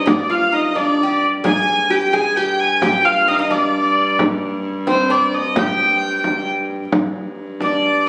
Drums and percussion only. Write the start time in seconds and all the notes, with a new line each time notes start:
0.07 frame drum
0.53 frame drum
0.76 frame drum
1.22 frame drum
1.45 frame drum
1.90 frame drum
2.13 frame drum
2.82 frame drum
3.28 frame drum
3.51 frame drum
4.19 frame drum
4.65 frame drum
4.87 frame drum
5.56 frame drum
6.24 frame drum
6.70 frame drum
6.92 frame drum
7.61 frame drum
7.84 frame drum